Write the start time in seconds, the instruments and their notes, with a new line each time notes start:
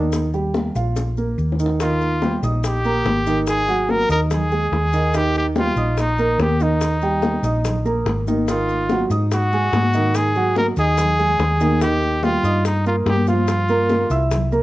Already playing: fingered electric bass D#2, grand piano D#3 D#4
0.12 high bongo, high conga, maracas
0.34 grand piano G3 G4, high bongo, high conga, maracas
0.54 high bongo, high conga, maracas
0.75 fingered electric bass A#1, grand piano F4 F5, high bongo, maracas
0.96 high bongo, high conga, maracas
1.17 grand piano A#3 A#4, high conga, maracas
1.38 fingered electric bass D#2, high conga, maracas
1.52 low bongo
1.59 grand piano D#3 D#4, maracas
1.66 low bongo
1.80 grand piano D#3 D#4 D#5, trumpet F4, high bongo, high conga, maracas
2.01 high bongo, high conga, maracas
2.22 grand piano G3 G4 G5, high bongo, high conga, maracas
2.43 fingered electric bass A#1, grand piano D#4 D#5 D#6, high bongo, high conga, maracas
2.64 trumpet G4, high bongo, high conga, maracas
2.85 grand piano A#3 A#4 A#5, high conga, maracas
3.05 fingered electric bass G#1, high bongo, low bongo, high conga, maracas
3.27 grand piano D#3 D#4 D#5, high bongo, maracas
3.47 trumpet G#4, high bongo, maracas
3.68 grand piano F#3 F#4 F#5, high bongo, high conga, maracas
3.89 trumpet A#4, high bongo, high conga, maracas
4.09 fingered electric bass D#2, grand piano D#4 D#5 D#6, trumpet A#4, high bongo, maracas
4.31 trumpet G#4, high bongo, high conga, low conga, maracas
4.51 grand piano G#3 G#4 G#5, high bongo, high conga, maracas
4.72 fingered electric bass D#2, high bongo, low bongo, high conga, maracas
4.93 grand piano D#3 D#4 D#5, maracas
5.14 grand piano D#3 D#4 D#5, trumpet G4, high bongo, high conga, maracas
5.35 trumpet G4, high bongo, high conga, maracas
5.56 grand piano G3 G4 G5, trumpet F4, high bongo, high conga, maracas
5.76 fingered electric bass A#1, grand piano D#4 D#5 D#6, high bongo, high conga, maracas
5.97 trumpet D#4, high bongo, high conga, maracas
6.18 grand piano A#3 A#4 A#5, high conga, maracas
6.38 fingered electric bass D#2, trumpet G4, high bongo, low bongo, high conga, maracas
6.60 grand piano D#3 D#4 D#5, trumpet D#4, high bongo, maracas
6.81 high bongo, high conga, maracas
7.02 grand piano G3 G4 G5, high bongo, high conga, maracas
7.22 high bongo, high conga, maracas
7.43 fingered electric bass A#1, grand piano D#4 D#5 D#6, high bongo, maracas
7.64 high bongo, high conga, low conga, maracas
7.85 grand piano A#3 A#4 A#5, high bongo, high conga, maracas
8.05 fingered electric bass G#1, high bongo, low bongo, high conga, maracas
8.27 grand piano D#3 D#4 D#5, high conga, maracas
8.48 grand piano D#3 D#4 D#5, trumpet F4, high bongo, maracas
8.69 high bongo, high conga, maracas
8.89 grand piano F#3 F#4 F#5, high bongo, high conga, maracas
9.10 fingered electric bass G#2, grand piano D#4 D#5 D#6, high bongo, high conga, maracas
9.31 trumpet F#4, high bongo, high conga, maracas
9.52 grand piano G#3 G#4 G#5, high conga, maracas
9.72 fingered electric bass G#2, high bongo, low bongo, high conga, maracas
9.93 grand piano D#3 D#4 D#5, high bongo, maracas
10.14 trumpet G#4, high bongo, high conga, maracas
10.35 grand piano F#3 F#4 F#5, high bongo, high conga, maracas
10.56 trumpet A#4, high bongo, high conga, maracas
10.77 fingered electric bass D#2, grand piano D#4 D#5 D#6, trumpet G#4, high bongo, maracas
10.98 high bongo, high conga, low conga, maracas
11.19 grand piano G#3 G#4 G#5, high bongo, high conga, low conga, maracas
11.39 fingered electric bass D#2, high bongo, low bongo, high conga, maracas
11.61 grand piano D#3 D#4 D#5, high conga, maracas
11.81 grand piano D#3 D#4 D#5, trumpet G4, high bongo, high conga, maracas
12.02 high bongo, high conga, maracas
12.23 grand piano G3 G4 G5, trumpet F4, high bongo, high conga, maracas
12.43 fingered electric bass G2, grand piano D#4 D#5 D#6, high bongo, high conga, maracas
12.64 trumpet D#4, high bongo, high conga, maracas
12.85 grand piano A#3 A#4 A#5, trumpet F4, high conga, maracas
13.06 fingered electric bass G2, trumpet G4, high bongo, low bongo, high conga, maracas
13.27 grand piano F3 F4 F5, trumpet F4, high bongo, high conga, maracas
13.48 high bongo, maracas
13.68 grand piano A#3 A#4 A#5, high bongo, maracas
13.89 high bongo, high conga, maracas
14.10 fingered electric bass C2, grand piano E4 E5 E6, high bongo, maracas
14.31 high bongo, high conga, low conga, maracas
14.52 grand piano A#3 A#4 A#5, high bongo, high conga, maracas